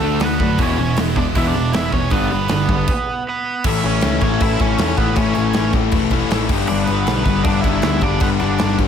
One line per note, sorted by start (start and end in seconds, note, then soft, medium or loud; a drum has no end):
0.00 0.20 D2 medium
0.00 0.19 D3 medium
0.00 0.21 D3 loud
0.00 0.17 A3 medium
0.00 0.20 A3 loud
0.00 0.21 D4 loud
0.00 0.21 F#4 loud
0.00 0.22 A4 loud
0.00 0.23 A4 medium
0.04 0.21 A3 loud
0.04 0.21 D4 loud
0.20 0.40 D2 loud
0.20 0.40 D3 medium
0.20 0.39 D3 medium
0.20 0.41 A3 loud
0.20 0.39 A3 medium
0.20 0.58 B3 medium
0.20 0.41 D4 loud
0.20 0.42 F#4 loud
0.20 0.42 A4 medium
0.20 snare loud
0.20 open hi-hat medium
0.25 0.62 B4 loud
0.40 0.58 F#2 loud
0.40 0.58 D3 medium
0.40 0.59 D3 medium
0.40 0.58 A3 medium
0.40 0.59 A3 medium
0.40 0.59 D4 medium
0.40 0.60 F#4 loud
0.40 0.60 A4 loud
0.40 kick medium
0.58 0.77 E1 loud
0.58 0.77 E2 medium
0.58 0.78 B2 medium
0.58 0.78 E3 medium
0.58 0.96 E3 loud
0.58 0.96 G#3 loud
0.58 0.98 B3 medium
0.58 0.95 C#4 medium
0.58 0.97 E4 loud
0.58 kick loud
0.58 open hi-hat medium
0.63 0.97 C#5 loud
0.79 0.97 E1 loud
0.79 0.96 E2 medium
0.79 0.96 B2 medium
0.97 1.34 E1 medium
0.97 1.15 E2 medium
0.97 1.15 B2 medium
0.97 1.16 E3 medium
0.97 1.16 G#3 medium
0.97 1.17 B3 loud
0.97 1.17 E4 loud
0.97 snare loud
0.97 open hi-hat medium
1.16 1.34 E2 medium
1.16 1.34 B2 medium
1.16 1.36 E3 medium
1.16 1.37 G#3 medium
1.16 1.37 B3 medium
1.16 1.22 D4 medium
1.16 1.37 E4 loud
1.16 1.24 D5 loud
1.16 kick medium
1.35 1.54 E1 loud
1.35 1.54 E2 medium
1.35 1.54 B2 loud
1.35 1.74 E3 loud
1.35 1.55 E3 loud
1.35 1.74 G#3 loud
1.35 1.75 B3 loud
1.35 1.45 E4 medium
1.35 1.75 E4 medium
1.35 1.47 E5 loud
1.35 kick loud
1.35 open hi-hat medium
1.45 1.72 D4 medium
1.45 1.73 D5 medium
1.56 1.73 E1 loud
1.56 1.73 E2 medium
1.56 1.73 B2 medium
1.73 1.91 E1 medium
1.73 1.91 E2 medium
1.73 1.92 B2 medium
1.73 1.93 E3 medium
1.73 1.94 G#3 loud
1.73 1.91 E4 medium
1.73 1.95 E4 medium
1.73 1.93 E5 loud
1.73 snare loud
1.73 open hi-hat medium
1.77 1.95 B3 medium
1.92 2.11 E1 medium
1.92 2.11 E2 medium
1.92 2.11 B2 medium
1.92 2.11 E3 medium
1.92 2.12 G#3 medium
1.92 2.10 C#4 medium
1.92 2.12 C#5 loud
1.92 kick medium
1.96 2.12 B3 medium
1.96 2.13 E4 medium
2.10 2.30 G1 loud
2.10 2.50 G2 loud
2.10 2.30 G2 loud
2.10 2.50 D3 loud
2.10 2.30 D3 medium
2.10 2.52 G3 medium
2.10 2.31 G3 medium
2.10 3.22 B3 medium
2.10 2.52 B3 loud
2.10 3.29 B4 loud
2.10 kick loud
2.10 open hi-hat medium
2.15 2.52 D4 loud
2.31 2.50 G1 medium
2.31 2.48 G2 medium
2.31 2.48 D3 medium
2.48 2.68 G1 medium
2.48 2.68 G2 medium
2.48 2.68 D3 medium
2.48 2.69 D3 loud
2.48 snare loud
2.48 open hi-hat medium
2.53 2.70 G3 medium
2.53 2.71 B3 loud
2.53 2.71 D4 loud
2.69 2.87 G1 medium
2.69 2.86 G2 medium
2.69 2.87 G2 medium
2.69 2.87 D3 medium
2.69 2.88 D3 medium
2.69 2.88 G3 medium
2.69 2.89 B3 medium
2.69 2.89 D4 medium
2.69 kick loud
2.88 kick loud
2.88 crash loud
3.29 3.63 B3 medium
3.29 3.64 B4 medium
3.64 3.79 A1 loud
3.64 3.83 A2 medium
3.64 4.59 A2 medium
3.64 3.83 E3 loud
3.64 4.59 E3 medium
3.64 3.84 A3 loud
3.64 4.60 A3 loud
3.64 4.60 C#4 loud
3.64 3.69 E4 medium
3.64 kick loud
3.64 crash loud
3.69 4.59 E4 loud
3.69 3.86 E5 loud
3.83 3.98 A1 medium
3.83 4.02 A2 medium
3.83 4.03 E3 loud
3.83 4.03 A3 medium
3.83 4.20 C#4 medium
3.83 4.23 C#5 loud
3.83 crash medium
4.01 4.17 C#2 medium
4.01 4.22 A2 medium
4.01 4.22 E3 medium
4.01 4.23 A3 loud
4.01 snare loud
4.01 crash medium
4.21 4.36 A1 medium
4.21 4.41 A2 medium
4.21 4.41 E3 loud
4.21 4.42 A3 loud
4.21 4.41 C#4 medium
4.21 4.42 C#5 medium
4.21 kick medium
4.21 crash medium
4.40 4.55 A2 medium
4.40 4.59 A2 medium
4.40 4.60 E3 medium
4.40 4.61 A3 medium
4.40 4.59 E4 medium
4.40 4.61 E5 medium
4.40 kick loud
4.40 crash medium
4.59 4.73 A1 loud
4.59 4.79 A2 loud
4.59 4.79 E3 loud
4.59 4.78 E3 medium
4.59 4.80 A3 loud
4.59 4.79 A3 medium
4.59 4.96 C#4 medium
4.59 4.79 C#4 medium
4.59 4.78 E4 medium
4.59 4.97 C#5 medium
4.59 kick loud
4.59 crash medium
4.64 4.77 A2 medium
4.78 4.93 E2 medium
4.78 5.15 A2 medium
4.78 4.98 A2 medium
4.78 5.16 E3 medium
4.78 4.98 E3 medium
4.78 5.17 A3 medium
4.78 4.99 A3 medium
4.78 5.17 C#4 medium
4.78 5.17 E4 loud
4.78 snare loud
4.78 crash loud
4.97 5.12 A1 loud
4.97 5.17 A2 medium
4.97 5.18 E3 loud
4.97 5.19 A3 loud
4.97 5.16 B3 medium
4.97 5.15 B4 medium
4.97 kick medium
4.97 crash medium
5.15 6.10 A2 medium
5.15 5.31 A2 loud
5.15 5.37 A2 medium
5.15 6.11 E3 medium
5.15 6.12 A3 loud
5.15 5.34 C#4 medium
5.15 6.11 C#4 medium
5.15 5.33 C#5 loud
5.15 kick loud
5.15 crash medium
5.19 5.37 E3 loud
5.19 5.37 A3 loud
5.19 6.10 E4 loud
5.34 5.50 A1 medium
5.34 5.56 A2 medium
5.34 5.56 E3 medium
5.34 5.71 C#4 medium
5.34 5.71 C#5 loud
5.34 crash medium
5.38 5.57 A3 loud
5.53 5.70 A1 medium
5.53 5.74 A2 medium
5.53 5.75 E3 loud
5.53 snare loud
5.53 crash medium
5.58 5.75 A3 loud
5.73 5.88 A1 medium
5.73 5.94 A2 medium
5.73 5.94 E3 loud
5.73 5.95 A3 loud
5.73 kick medium
5.73 crash medium
5.92 6.21 E1 loud
5.92 6.12 A2 medium
5.92 6.12 E3 medium
5.92 kick loud
5.92 crash medium
5.96 6.12 A3 loud
6.11 6.32 A2 medium
6.11 6.32 E3 loud
6.11 6.30 E3 medium
6.11 6.30 A3 medium
6.11 6.33 A3 loud
6.11 6.30 C#4 medium
6.11 6.30 E4 medium
6.11 kick loud
6.11 crash medium
6.15 6.29 A2 medium
6.30 6.45 A1 medium
6.30 6.48 A2 medium
6.30 6.50 A2 medium
6.30 6.49 E3 medium
6.30 6.50 E3 loud
6.30 6.50 A3 medium
6.30 6.50 C#4 medium
6.30 6.50 E4 loud
6.30 snare loud
6.30 crash loud
6.34 6.51 A3 medium
6.49 6.64 G1 loud
6.49 7.44 G2 medium
6.49 6.70 G2 loud
6.49 7.44 D3 loud
6.49 6.70 D3 loud
6.49 7.46 G3 loud
6.49 6.72 G3 loud
6.49 7.47 B3 loud
6.49 kick loud
6.49 crash loud
6.54 7.48 D4 loud
6.67 6.83 G1 loud
6.67 6.89 G2 loud
6.67 6.90 D3 loud
6.67 6.87 D4 medium
6.67 6.85 D5 medium
6.67 crash loud
6.72 6.91 G3 loud
6.85 7.02 G1 loud
6.85 7.23 B3 medium
6.85 7.23 B4 loud
6.85 crash medium
6.90 7.08 G2 loud
6.90 7.08 D3 loud
6.90 7.09 G3 loud
7.07 7.21 B1 medium
7.07 7.28 G2 medium
7.07 7.28 D3 loud
7.07 7.29 G3 loud
7.07 snare loud
7.07 crash loud
7.24 7.40 G1 loud
7.24 7.43 B3 medium
7.24 7.43 B4 medium
7.24 kick loud
7.24 crash medium
7.28 7.46 G2 medium
7.28 7.46 D3 loud
7.28 7.47 G3 loud
7.43 7.59 G2 loud
7.43 7.63 G2 medium
7.43 7.65 G2 medium
7.43 7.63 D3 medium
7.43 7.64 G3 medium
7.43 7.61 D4 medium
7.43 7.61 D5 loud
7.43 kick loud
7.43 crash loud
7.47 7.66 D3 loud
7.47 7.66 G3 loud
7.47 7.64 B3 medium
7.47 7.63 D4 loud
7.61 7.78 G1 medium
7.61 8.02 B3 medium
7.61 8.07 D4 medium
7.61 7.98 E4 medium
7.61 8.02 E5 loud
7.61 kick loud
7.61 crash medium
7.66 7.84 G2 loud
7.66 8.02 G2 medium
7.66 8.02 D3 medium
7.66 7.85 D3 loud
7.66 8.02 G3 medium
7.66 7.85 G3 loud
7.82 7.98 D2 loud
7.82 8.03 G2 medium
7.82 8.03 D3 medium
7.82 snare loud
7.82 crash medium
7.86 8.04 G3 loud
8.01 8.16 G1 loud
8.01 8.88 G2 loud
8.01 8.21 G2 medium
8.01 8.21 D3 loud
8.01 8.88 D3 loud
8.01 8.22 G3 loud
8.01 8.20 D4 medium
8.01 8.22 D5 loud
8.01 kick loud
8.01 crash medium
8.05 8.88 G3 loud
8.05 8.88 B3 loud
8.05 8.88 D4 loud
8.20 8.35 G2 loud
8.20 8.40 G2 loud
8.20 8.41 D3 loud
8.20 8.41 G3 loud
8.20 8.27 B3 medium
8.20 8.27 B4 medium
8.20 kick loud
8.20 crash medium
8.40 8.56 G1 loud
8.40 8.58 G2 medium
8.40 8.59 D3 loud
8.40 8.60 G3 medium
8.40 8.76 D4 medium
8.40 8.76 D5 medium
8.40 crash medium
8.58 8.75 G1 medium
8.58 8.78 G2 medium
8.58 8.79 D3 medium
8.58 8.79 G3 loud
8.58 snare loud
8.58 crash medium
8.78 8.88 G1 loud
8.78 8.88 G2 loud
8.78 8.88 D3 loud
8.78 8.88 G3 loud
8.78 kick loud
8.78 crash medium